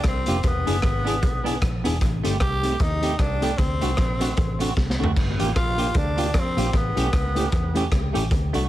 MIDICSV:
0, 0, Header, 1, 7, 480
1, 0, Start_track
1, 0, Tempo, 393443
1, 537, Time_signature, 4, 2, 24, 8
1, 10601, End_track
2, 0, Start_track
2, 0, Title_t, "Tonewheel organ"
2, 0, Program_c, 0, 16
2, 329, Note_on_c, 0, 58, 88
2, 334, Note_on_c, 0, 62, 75
2, 339, Note_on_c, 0, 65, 82
2, 346, Note_on_c, 0, 67, 94
2, 447, Note_off_c, 0, 58, 0
2, 450, Note_off_c, 0, 62, 0
2, 452, Note_off_c, 0, 65, 0
2, 456, Note_off_c, 0, 67, 0
2, 808, Note_on_c, 0, 59, 83
2, 816, Note_on_c, 0, 62, 75
2, 819, Note_on_c, 0, 64, 78
2, 824, Note_on_c, 0, 68, 94
2, 927, Note_off_c, 0, 59, 0
2, 931, Note_off_c, 0, 62, 0
2, 932, Note_off_c, 0, 64, 0
2, 935, Note_off_c, 0, 68, 0
2, 1292, Note_on_c, 0, 59, 85
2, 1293, Note_on_c, 0, 62, 78
2, 1300, Note_on_c, 0, 64, 78
2, 1309, Note_on_c, 0, 68, 97
2, 1408, Note_off_c, 0, 59, 0
2, 1409, Note_off_c, 0, 62, 0
2, 1413, Note_off_c, 0, 64, 0
2, 1417, Note_off_c, 0, 68, 0
2, 1767, Note_on_c, 0, 59, 85
2, 1772, Note_on_c, 0, 62, 74
2, 1777, Note_on_c, 0, 64, 79
2, 1784, Note_on_c, 0, 68, 95
2, 1886, Note_off_c, 0, 59, 0
2, 1889, Note_off_c, 0, 62, 0
2, 1891, Note_off_c, 0, 64, 0
2, 1895, Note_off_c, 0, 68, 0
2, 2246, Note_on_c, 0, 59, 91
2, 2250, Note_on_c, 0, 62, 81
2, 2257, Note_on_c, 0, 64, 75
2, 2262, Note_on_c, 0, 68, 97
2, 2365, Note_off_c, 0, 59, 0
2, 2367, Note_off_c, 0, 62, 0
2, 2371, Note_off_c, 0, 64, 0
2, 2373, Note_off_c, 0, 68, 0
2, 2727, Note_on_c, 0, 60, 83
2, 2731, Note_on_c, 0, 63, 82
2, 2738, Note_on_c, 0, 67, 76
2, 2744, Note_on_c, 0, 69, 93
2, 2846, Note_off_c, 0, 60, 0
2, 2848, Note_off_c, 0, 63, 0
2, 2851, Note_off_c, 0, 67, 0
2, 2854, Note_off_c, 0, 69, 0
2, 3203, Note_on_c, 0, 60, 87
2, 3208, Note_on_c, 0, 63, 75
2, 3210, Note_on_c, 0, 67, 81
2, 3221, Note_on_c, 0, 69, 93
2, 3324, Note_off_c, 0, 60, 0
2, 3327, Note_off_c, 0, 63, 0
2, 3327, Note_off_c, 0, 67, 0
2, 3333, Note_off_c, 0, 69, 0
2, 3681, Note_on_c, 0, 60, 90
2, 3682, Note_on_c, 0, 63, 81
2, 3691, Note_on_c, 0, 67, 78
2, 3697, Note_on_c, 0, 69, 93
2, 3803, Note_off_c, 0, 60, 0
2, 3803, Note_off_c, 0, 63, 0
2, 3808, Note_off_c, 0, 67, 0
2, 3811, Note_off_c, 0, 69, 0
2, 3887, Note_on_c, 0, 69, 44
2, 3888, Note_on_c, 0, 67, 36
2, 3947, Note_off_c, 0, 69, 0
2, 3948, Note_off_c, 0, 67, 0
2, 4159, Note_on_c, 0, 60, 79
2, 4167, Note_on_c, 0, 63, 81
2, 4170, Note_on_c, 0, 67, 78
2, 4176, Note_on_c, 0, 69, 92
2, 4282, Note_off_c, 0, 60, 0
2, 4286, Note_off_c, 0, 63, 0
2, 4288, Note_off_c, 0, 67, 0
2, 4291, Note_off_c, 0, 69, 0
2, 4652, Note_on_c, 0, 60, 88
2, 4654, Note_on_c, 0, 62, 77
2, 4657, Note_on_c, 0, 66, 77
2, 4666, Note_on_c, 0, 69, 92
2, 4768, Note_off_c, 0, 60, 0
2, 4769, Note_off_c, 0, 62, 0
2, 4771, Note_off_c, 0, 66, 0
2, 4776, Note_off_c, 0, 69, 0
2, 5126, Note_on_c, 0, 60, 83
2, 5135, Note_on_c, 0, 62, 80
2, 5135, Note_on_c, 0, 66, 81
2, 5144, Note_on_c, 0, 69, 94
2, 5246, Note_off_c, 0, 60, 0
2, 5250, Note_off_c, 0, 62, 0
2, 5250, Note_off_c, 0, 66, 0
2, 5255, Note_off_c, 0, 69, 0
2, 5618, Note_on_c, 0, 60, 81
2, 5623, Note_on_c, 0, 62, 78
2, 5631, Note_on_c, 0, 66, 77
2, 5631, Note_on_c, 0, 69, 95
2, 5732, Note_off_c, 0, 60, 0
2, 5734, Note_off_c, 0, 62, 0
2, 5738, Note_off_c, 0, 66, 0
2, 5738, Note_off_c, 0, 69, 0
2, 6092, Note_on_c, 0, 60, 89
2, 6099, Note_on_c, 0, 62, 74
2, 6105, Note_on_c, 0, 66, 76
2, 6109, Note_on_c, 0, 69, 88
2, 6209, Note_off_c, 0, 60, 0
2, 6212, Note_off_c, 0, 62, 0
2, 6215, Note_off_c, 0, 66, 0
2, 6217, Note_off_c, 0, 69, 0
2, 6566, Note_on_c, 0, 58, 81
2, 6576, Note_on_c, 0, 62, 75
2, 6579, Note_on_c, 0, 65, 74
2, 6584, Note_on_c, 0, 67, 91
2, 6686, Note_off_c, 0, 58, 0
2, 6691, Note_off_c, 0, 62, 0
2, 6693, Note_off_c, 0, 65, 0
2, 6695, Note_off_c, 0, 67, 0
2, 7045, Note_on_c, 0, 58, 81
2, 7052, Note_on_c, 0, 62, 78
2, 7053, Note_on_c, 0, 65, 78
2, 7063, Note_on_c, 0, 67, 95
2, 7165, Note_off_c, 0, 58, 0
2, 7169, Note_off_c, 0, 62, 0
2, 7170, Note_off_c, 0, 65, 0
2, 7175, Note_off_c, 0, 67, 0
2, 7530, Note_on_c, 0, 58, 83
2, 7537, Note_on_c, 0, 62, 80
2, 7540, Note_on_c, 0, 65, 73
2, 7548, Note_on_c, 0, 67, 90
2, 7648, Note_off_c, 0, 58, 0
2, 7652, Note_off_c, 0, 62, 0
2, 7653, Note_off_c, 0, 65, 0
2, 7657, Note_off_c, 0, 67, 0
2, 8009, Note_on_c, 0, 58, 90
2, 8020, Note_on_c, 0, 62, 81
2, 8021, Note_on_c, 0, 65, 81
2, 8024, Note_on_c, 0, 67, 99
2, 8128, Note_off_c, 0, 58, 0
2, 8133, Note_off_c, 0, 62, 0
2, 8134, Note_off_c, 0, 65, 0
2, 8135, Note_off_c, 0, 67, 0
2, 8487, Note_on_c, 0, 57, 82
2, 8492, Note_on_c, 0, 61, 75
2, 8496, Note_on_c, 0, 64, 75
2, 8502, Note_on_c, 0, 67, 95
2, 8607, Note_off_c, 0, 57, 0
2, 8610, Note_off_c, 0, 61, 0
2, 8611, Note_off_c, 0, 64, 0
2, 8615, Note_off_c, 0, 67, 0
2, 8969, Note_on_c, 0, 57, 90
2, 8976, Note_on_c, 0, 61, 75
2, 8980, Note_on_c, 0, 64, 79
2, 8984, Note_on_c, 0, 67, 98
2, 9088, Note_off_c, 0, 57, 0
2, 9092, Note_off_c, 0, 61, 0
2, 9093, Note_off_c, 0, 64, 0
2, 9095, Note_off_c, 0, 67, 0
2, 9442, Note_on_c, 0, 57, 82
2, 9447, Note_on_c, 0, 61, 80
2, 9455, Note_on_c, 0, 64, 76
2, 9458, Note_on_c, 0, 67, 94
2, 9564, Note_off_c, 0, 57, 0
2, 9567, Note_off_c, 0, 61, 0
2, 9571, Note_off_c, 0, 64, 0
2, 9573, Note_off_c, 0, 67, 0
2, 9923, Note_on_c, 0, 57, 92
2, 9926, Note_on_c, 0, 61, 79
2, 9934, Note_on_c, 0, 67, 98
2, 9935, Note_on_c, 0, 64, 81
2, 10045, Note_off_c, 0, 57, 0
2, 10047, Note_off_c, 0, 61, 0
2, 10051, Note_off_c, 0, 64, 0
2, 10051, Note_off_c, 0, 67, 0
2, 10405, Note_on_c, 0, 57, 84
2, 10410, Note_on_c, 0, 62, 76
2, 10415, Note_on_c, 0, 66, 77
2, 10421, Note_on_c, 0, 69, 94
2, 10526, Note_off_c, 0, 57, 0
2, 10529, Note_off_c, 0, 62, 0
2, 10531, Note_off_c, 0, 66, 0
2, 10534, Note_off_c, 0, 69, 0
2, 10601, End_track
3, 0, Start_track
3, 0, Title_t, "Clean electric guitar"
3, 0, Program_c, 1, 27
3, 321, Note_on_c, 1, 58, 85
3, 336, Note_on_c, 1, 65, 90
3, 346, Note_on_c, 1, 67, 101
3, 468, Note_off_c, 1, 58, 0
3, 475, Note_off_c, 1, 65, 0
3, 480, Note_off_c, 1, 67, 0
3, 800, Note_on_c, 1, 59, 77
3, 812, Note_on_c, 1, 62, 70
3, 816, Note_on_c, 1, 68, 90
3, 947, Note_off_c, 1, 59, 0
3, 953, Note_off_c, 1, 62, 0
3, 955, Note_off_c, 1, 68, 0
3, 1271, Note_on_c, 1, 59, 74
3, 1282, Note_on_c, 1, 62, 77
3, 1299, Note_on_c, 1, 68, 79
3, 1422, Note_off_c, 1, 59, 0
3, 1428, Note_off_c, 1, 62, 0
3, 1436, Note_off_c, 1, 68, 0
3, 1757, Note_on_c, 1, 59, 78
3, 1770, Note_on_c, 1, 62, 89
3, 1781, Note_on_c, 1, 68, 92
3, 1905, Note_off_c, 1, 59, 0
3, 1911, Note_off_c, 1, 62, 0
3, 1917, Note_off_c, 1, 68, 0
3, 2245, Note_on_c, 1, 59, 91
3, 2260, Note_on_c, 1, 62, 83
3, 2270, Note_on_c, 1, 68, 93
3, 2389, Note_off_c, 1, 59, 0
3, 2396, Note_off_c, 1, 62, 0
3, 2401, Note_off_c, 1, 68, 0
3, 2727, Note_on_c, 1, 57, 88
3, 2741, Note_on_c, 1, 60, 81
3, 2748, Note_on_c, 1, 67, 91
3, 2870, Note_off_c, 1, 57, 0
3, 2877, Note_off_c, 1, 60, 0
3, 2881, Note_off_c, 1, 67, 0
3, 3212, Note_on_c, 1, 57, 81
3, 3221, Note_on_c, 1, 60, 85
3, 3234, Note_on_c, 1, 67, 81
3, 3353, Note_off_c, 1, 57, 0
3, 3357, Note_off_c, 1, 60, 0
3, 3363, Note_off_c, 1, 67, 0
3, 3676, Note_on_c, 1, 57, 75
3, 3693, Note_on_c, 1, 60, 80
3, 3705, Note_on_c, 1, 67, 89
3, 3825, Note_off_c, 1, 57, 0
3, 3833, Note_off_c, 1, 60, 0
3, 3839, Note_off_c, 1, 67, 0
3, 4167, Note_on_c, 1, 57, 79
3, 4175, Note_on_c, 1, 60, 84
3, 4187, Note_on_c, 1, 67, 91
3, 4310, Note_off_c, 1, 57, 0
3, 4314, Note_off_c, 1, 60, 0
3, 4320, Note_off_c, 1, 67, 0
3, 4650, Note_on_c, 1, 57, 75
3, 4658, Note_on_c, 1, 60, 78
3, 4672, Note_on_c, 1, 66, 80
3, 4792, Note_off_c, 1, 57, 0
3, 4796, Note_off_c, 1, 60, 0
3, 4803, Note_off_c, 1, 66, 0
3, 5126, Note_on_c, 1, 57, 68
3, 5134, Note_on_c, 1, 60, 74
3, 5142, Note_on_c, 1, 66, 82
3, 5270, Note_off_c, 1, 57, 0
3, 5274, Note_off_c, 1, 60, 0
3, 5278, Note_off_c, 1, 66, 0
3, 5599, Note_on_c, 1, 57, 69
3, 5610, Note_on_c, 1, 60, 75
3, 5624, Note_on_c, 1, 66, 90
3, 5746, Note_off_c, 1, 57, 0
3, 5752, Note_off_c, 1, 60, 0
3, 5759, Note_off_c, 1, 66, 0
3, 6081, Note_on_c, 1, 57, 78
3, 6086, Note_on_c, 1, 60, 77
3, 6099, Note_on_c, 1, 66, 78
3, 6228, Note_off_c, 1, 57, 0
3, 6230, Note_off_c, 1, 60, 0
3, 6237, Note_off_c, 1, 66, 0
3, 6563, Note_on_c, 1, 58, 71
3, 6576, Note_on_c, 1, 65, 91
3, 6588, Note_on_c, 1, 67, 87
3, 6709, Note_off_c, 1, 58, 0
3, 6715, Note_off_c, 1, 65, 0
3, 6721, Note_off_c, 1, 67, 0
3, 7042, Note_on_c, 1, 58, 77
3, 7057, Note_on_c, 1, 65, 81
3, 7064, Note_on_c, 1, 67, 91
3, 7188, Note_off_c, 1, 58, 0
3, 7196, Note_off_c, 1, 65, 0
3, 7199, Note_off_c, 1, 67, 0
3, 7528, Note_on_c, 1, 58, 72
3, 7542, Note_on_c, 1, 65, 80
3, 7551, Note_on_c, 1, 67, 86
3, 7671, Note_off_c, 1, 58, 0
3, 7678, Note_off_c, 1, 65, 0
3, 7683, Note_off_c, 1, 67, 0
3, 8014, Note_on_c, 1, 58, 80
3, 8026, Note_on_c, 1, 65, 83
3, 8034, Note_on_c, 1, 67, 86
3, 8154, Note_off_c, 1, 58, 0
3, 8161, Note_off_c, 1, 65, 0
3, 8164, Note_off_c, 1, 67, 0
3, 8495, Note_on_c, 1, 57, 91
3, 8503, Note_on_c, 1, 61, 79
3, 8520, Note_on_c, 1, 67, 89
3, 8635, Note_off_c, 1, 57, 0
3, 8639, Note_off_c, 1, 61, 0
3, 8647, Note_off_c, 1, 67, 0
3, 8963, Note_on_c, 1, 57, 79
3, 8977, Note_on_c, 1, 61, 78
3, 8987, Note_on_c, 1, 67, 89
3, 9109, Note_off_c, 1, 57, 0
3, 9116, Note_off_c, 1, 61, 0
3, 9121, Note_off_c, 1, 67, 0
3, 9453, Note_on_c, 1, 57, 77
3, 9465, Note_on_c, 1, 61, 88
3, 9475, Note_on_c, 1, 67, 100
3, 9594, Note_off_c, 1, 57, 0
3, 9600, Note_off_c, 1, 61, 0
3, 9605, Note_off_c, 1, 67, 0
3, 9920, Note_on_c, 1, 57, 85
3, 9935, Note_on_c, 1, 61, 91
3, 9942, Note_on_c, 1, 67, 100
3, 10068, Note_off_c, 1, 57, 0
3, 10075, Note_off_c, 1, 61, 0
3, 10079, Note_off_c, 1, 67, 0
3, 10409, Note_on_c, 1, 57, 79
3, 10414, Note_on_c, 1, 62, 86
3, 10431, Note_on_c, 1, 66, 93
3, 10552, Note_off_c, 1, 57, 0
3, 10555, Note_off_c, 1, 62, 0
3, 10563, Note_off_c, 1, 66, 0
3, 10601, End_track
4, 0, Start_track
4, 0, Title_t, "Tenor saxophone"
4, 0, Program_c, 2, 66
4, 94, Note_on_c, 2, 60, 85
4, 583, Note_on_c, 2, 59, 81
4, 601, Note_off_c, 2, 60, 0
4, 1999, Note_off_c, 2, 59, 0
4, 2941, Note_on_c, 2, 67, 105
4, 3425, Note_on_c, 2, 63, 92
4, 3443, Note_off_c, 2, 67, 0
4, 3883, Note_on_c, 2, 62, 92
4, 3902, Note_off_c, 2, 63, 0
4, 4362, Note_on_c, 2, 60, 87
4, 4380, Note_off_c, 2, 62, 0
4, 5810, Note_off_c, 2, 60, 0
4, 6788, Note_on_c, 2, 65, 98
4, 7272, Note_on_c, 2, 62, 97
4, 7290, Note_off_c, 2, 65, 0
4, 7799, Note_on_c, 2, 60, 88
4, 7818, Note_off_c, 2, 62, 0
4, 8259, Note_on_c, 2, 59, 84
4, 8277, Note_off_c, 2, 60, 0
4, 9679, Note_off_c, 2, 59, 0
4, 10601, End_track
5, 0, Start_track
5, 0, Title_t, "Fingered electric bass"
5, 0, Program_c, 3, 33
5, 52, Note_on_c, 3, 36, 88
5, 291, Note_off_c, 3, 36, 0
5, 346, Note_on_c, 3, 29, 86
5, 513, Note_off_c, 3, 29, 0
5, 537, Note_on_c, 3, 28, 101
5, 774, Note_off_c, 3, 28, 0
5, 823, Note_on_c, 3, 30, 81
5, 991, Note_off_c, 3, 30, 0
5, 1022, Note_on_c, 3, 32, 86
5, 1504, Note_off_c, 3, 32, 0
5, 1504, Note_on_c, 3, 35, 90
5, 1908, Note_off_c, 3, 35, 0
5, 1983, Note_on_c, 3, 34, 91
5, 2217, Note_off_c, 3, 34, 0
5, 2272, Note_on_c, 3, 28, 89
5, 2435, Note_off_c, 3, 28, 0
5, 2459, Note_on_c, 3, 33, 92
5, 2695, Note_off_c, 3, 33, 0
5, 2743, Note_on_c, 3, 31, 75
5, 2910, Note_off_c, 3, 31, 0
5, 2940, Note_on_c, 3, 36, 84
5, 3346, Note_off_c, 3, 36, 0
5, 3419, Note_on_c, 3, 39, 97
5, 3826, Note_off_c, 3, 39, 0
5, 3896, Note_on_c, 3, 36, 84
5, 4304, Note_off_c, 3, 36, 0
5, 4381, Note_on_c, 3, 38, 96
5, 4616, Note_off_c, 3, 38, 0
5, 4662, Note_on_c, 3, 36, 76
5, 4830, Note_off_c, 3, 36, 0
5, 4862, Note_on_c, 3, 34, 76
5, 5267, Note_off_c, 3, 34, 0
5, 5345, Note_on_c, 3, 33, 83
5, 5749, Note_off_c, 3, 33, 0
5, 5821, Note_on_c, 3, 36, 94
5, 6057, Note_off_c, 3, 36, 0
5, 6104, Note_on_c, 3, 38, 84
5, 6305, Note_on_c, 3, 31, 96
5, 6323, Note_off_c, 3, 38, 0
5, 6539, Note_off_c, 3, 31, 0
5, 6589, Note_on_c, 3, 33, 86
5, 6755, Note_off_c, 3, 33, 0
5, 6786, Note_on_c, 3, 34, 80
5, 7191, Note_off_c, 3, 34, 0
5, 7262, Note_on_c, 3, 38, 86
5, 7743, Note_off_c, 3, 38, 0
5, 7743, Note_on_c, 3, 41, 84
5, 7978, Note_off_c, 3, 41, 0
5, 8012, Note_on_c, 3, 34, 91
5, 8185, Note_off_c, 3, 34, 0
5, 8218, Note_on_c, 3, 33, 95
5, 8455, Note_off_c, 3, 33, 0
5, 8498, Note_on_c, 3, 35, 83
5, 8668, Note_off_c, 3, 35, 0
5, 8702, Note_on_c, 3, 37, 75
5, 9108, Note_off_c, 3, 37, 0
5, 9180, Note_on_c, 3, 40, 90
5, 9587, Note_off_c, 3, 40, 0
5, 9664, Note_on_c, 3, 37, 89
5, 9899, Note_off_c, 3, 37, 0
5, 9951, Note_on_c, 3, 33, 91
5, 10116, Note_off_c, 3, 33, 0
5, 10145, Note_on_c, 3, 38, 100
5, 10380, Note_off_c, 3, 38, 0
5, 10419, Note_on_c, 3, 36, 85
5, 10589, Note_off_c, 3, 36, 0
5, 10601, End_track
6, 0, Start_track
6, 0, Title_t, "Muted clean electric guitar strokes"
6, 59, Note_on_c, 9, 29, 51
6, 181, Note_off_c, 9, 29, 0
6, 1000, Note_on_c, 9, 29, 41
6, 1122, Note_off_c, 9, 29, 0
6, 2954, Note_on_c, 9, 29, 45
6, 3076, Note_off_c, 9, 29, 0
6, 7739, Note_on_c, 9, 29, 37
6, 7861, Note_off_c, 9, 29, 0
6, 10601, End_track
7, 0, Start_track
7, 0, Title_t, "Drums"
7, 45, Note_on_c, 9, 37, 105
7, 46, Note_on_c, 9, 42, 64
7, 52, Note_on_c, 9, 36, 103
7, 167, Note_off_c, 9, 37, 0
7, 168, Note_off_c, 9, 42, 0
7, 174, Note_off_c, 9, 36, 0
7, 318, Note_on_c, 9, 42, 93
7, 440, Note_off_c, 9, 42, 0
7, 526, Note_on_c, 9, 42, 64
7, 534, Note_on_c, 9, 36, 104
7, 648, Note_off_c, 9, 42, 0
7, 656, Note_off_c, 9, 36, 0
7, 820, Note_on_c, 9, 42, 83
7, 942, Note_off_c, 9, 42, 0
7, 1005, Note_on_c, 9, 37, 98
7, 1010, Note_on_c, 9, 42, 71
7, 1017, Note_on_c, 9, 36, 105
7, 1127, Note_off_c, 9, 37, 0
7, 1132, Note_off_c, 9, 42, 0
7, 1139, Note_off_c, 9, 36, 0
7, 1303, Note_on_c, 9, 42, 81
7, 1425, Note_off_c, 9, 42, 0
7, 1496, Note_on_c, 9, 42, 66
7, 1498, Note_on_c, 9, 36, 112
7, 1618, Note_off_c, 9, 42, 0
7, 1620, Note_off_c, 9, 36, 0
7, 1783, Note_on_c, 9, 42, 77
7, 1905, Note_off_c, 9, 42, 0
7, 1974, Note_on_c, 9, 36, 106
7, 1978, Note_on_c, 9, 37, 113
7, 1979, Note_on_c, 9, 42, 64
7, 2096, Note_off_c, 9, 36, 0
7, 2100, Note_off_c, 9, 37, 0
7, 2101, Note_off_c, 9, 42, 0
7, 2257, Note_on_c, 9, 42, 99
7, 2379, Note_off_c, 9, 42, 0
7, 2454, Note_on_c, 9, 42, 67
7, 2455, Note_on_c, 9, 36, 102
7, 2576, Note_off_c, 9, 42, 0
7, 2577, Note_off_c, 9, 36, 0
7, 2740, Note_on_c, 9, 42, 84
7, 2862, Note_off_c, 9, 42, 0
7, 2931, Note_on_c, 9, 37, 106
7, 2936, Note_on_c, 9, 36, 103
7, 2936, Note_on_c, 9, 42, 65
7, 3053, Note_off_c, 9, 37, 0
7, 3058, Note_off_c, 9, 36, 0
7, 3058, Note_off_c, 9, 42, 0
7, 3214, Note_on_c, 9, 42, 89
7, 3336, Note_off_c, 9, 42, 0
7, 3411, Note_on_c, 9, 42, 69
7, 3415, Note_on_c, 9, 36, 112
7, 3533, Note_off_c, 9, 42, 0
7, 3537, Note_off_c, 9, 36, 0
7, 3693, Note_on_c, 9, 42, 84
7, 3815, Note_off_c, 9, 42, 0
7, 3891, Note_on_c, 9, 37, 107
7, 3892, Note_on_c, 9, 36, 101
7, 3893, Note_on_c, 9, 42, 61
7, 4013, Note_off_c, 9, 37, 0
7, 4014, Note_off_c, 9, 36, 0
7, 4015, Note_off_c, 9, 42, 0
7, 4174, Note_on_c, 9, 42, 92
7, 4296, Note_off_c, 9, 42, 0
7, 4372, Note_on_c, 9, 36, 109
7, 4372, Note_on_c, 9, 42, 68
7, 4494, Note_off_c, 9, 36, 0
7, 4494, Note_off_c, 9, 42, 0
7, 4653, Note_on_c, 9, 42, 77
7, 4775, Note_off_c, 9, 42, 0
7, 4844, Note_on_c, 9, 37, 106
7, 4850, Note_on_c, 9, 42, 64
7, 4855, Note_on_c, 9, 36, 109
7, 4966, Note_off_c, 9, 37, 0
7, 4972, Note_off_c, 9, 42, 0
7, 4977, Note_off_c, 9, 36, 0
7, 5133, Note_on_c, 9, 42, 89
7, 5255, Note_off_c, 9, 42, 0
7, 5327, Note_on_c, 9, 42, 70
7, 5337, Note_on_c, 9, 36, 111
7, 5449, Note_off_c, 9, 42, 0
7, 5459, Note_off_c, 9, 36, 0
7, 5615, Note_on_c, 9, 42, 87
7, 5737, Note_off_c, 9, 42, 0
7, 5816, Note_on_c, 9, 36, 100
7, 5823, Note_on_c, 9, 38, 53
7, 5938, Note_off_c, 9, 36, 0
7, 5945, Note_off_c, 9, 38, 0
7, 5978, Note_on_c, 9, 38, 66
7, 6100, Note_off_c, 9, 38, 0
7, 6143, Note_on_c, 9, 43, 97
7, 6265, Note_off_c, 9, 43, 0
7, 6301, Note_on_c, 9, 36, 103
7, 6305, Note_on_c, 9, 49, 74
7, 6423, Note_off_c, 9, 36, 0
7, 6427, Note_off_c, 9, 49, 0
7, 6583, Note_on_c, 9, 42, 84
7, 6705, Note_off_c, 9, 42, 0
7, 6782, Note_on_c, 9, 36, 104
7, 6784, Note_on_c, 9, 37, 104
7, 6790, Note_on_c, 9, 42, 64
7, 6904, Note_off_c, 9, 36, 0
7, 6906, Note_off_c, 9, 37, 0
7, 6912, Note_off_c, 9, 42, 0
7, 7055, Note_on_c, 9, 42, 91
7, 7177, Note_off_c, 9, 42, 0
7, 7249, Note_on_c, 9, 42, 66
7, 7258, Note_on_c, 9, 36, 109
7, 7371, Note_off_c, 9, 42, 0
7, 7380, Note_off_c, 9, 36, 0
7, 7536, Note_on_c, 9, 42, 87
7, 7658, Note_off_c, 9, 42, 0
7, 7736, Note_on_c, 9, 36, 96
7, 7737, Note_on_c, 9, 37, 115
7, 7739, Note_on_c, 9, 42, 67
7, 7858, Note_off_c, 9, 36, 0
7, 7859, Note_off_c, 9, 37, 0
7, 7861, Note_off_c, 9, 42, 0
7, 8025, Note_on_c, 9, 42, 96
7, 8147, Note_off_c, 9, 42, 0
7, 8215, Note_on_c, 9, 42, 71
7, 8216, Note_on_c, 9, 36, 103
7, 8337, Note_off_c, 9, 42, 0
7, 8338, Note_off_c, 9, 36, 0
7, 8504, Note_on_c, 9, 42, 82
7, 8626, Note_off_c, 9, 42, 0
7, 8698, Note_on_c, 9, 37, 103
7, 8700, Note_on_c, 9, 36, 100
7, 8704, Note_on_c, 9, 42, 69
7, 8820, Note_off_c, 9, 37, 0
7, 8822, Note_off_c, 9, 36, 0
7, 8826, Note_off_c, 9, 42, 0
7, 8981, Note_on_c, 9, 42, 87
7, 9103, Note_off_c, 9, 42, 0
7, 9174, Note_on_c, 9, 42, 70
7, 9179, Note_on_c, 9, 36, 109
7, 9296, Note_off_c, 9, 42, 0
7, 9301, Note_off_c, 9, 36, 0
7, 9462, Note_on_c, 9, 42, 85
7, 9584, Note_off_c, 9, 42, 0
7, 9658, Note_on_c, 9, 36, 101
7, 9660, Note_on_c, 9, 37, 106
7, 9662, Note_on_c, 9, 42, 67
7, 9780, Note_off_c, 9, 36, 0
7, 9782, Note_off_c, 9, 37, 0
7, 9784, Note_off_c, 9, 42, 0
7, 9946, Note_on_c, 9, 42, 97
7, 10068, Note_off_c, 9, 42, 0
7, 10138, Note_on_c, 9, 42, 67
7, 10139, Note_on_c, 9, 36, 108
7, 10260, Note_off_c, 9, 42, 0
7, 10261, Note_off_c, 9, 36, 0
7, 10419, Note_on_c, 9, 42, 77
7, 10541, Note_off_c, 9, 42, 0
7, 10601, End_track
0, 0, End_of_file